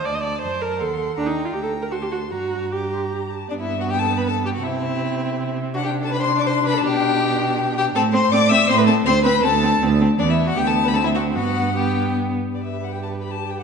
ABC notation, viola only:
X:1
M:3/4
L:1/16
Q:1/4=160
K:Gm
V:1 name="Viola"
d e d2 c2 B2 A2 z2 | D E2 F G A2 B ^F G F2 | ^F4 G6 z2 | [K:G] B,12 |
C12 | D12- | D12 | C2 C2 C2 C2 C2 C2 |
C2 C2 C2 C2 C2 C2 | B,4 B,4 C4 | B,4 B,6 z2 | G12 |]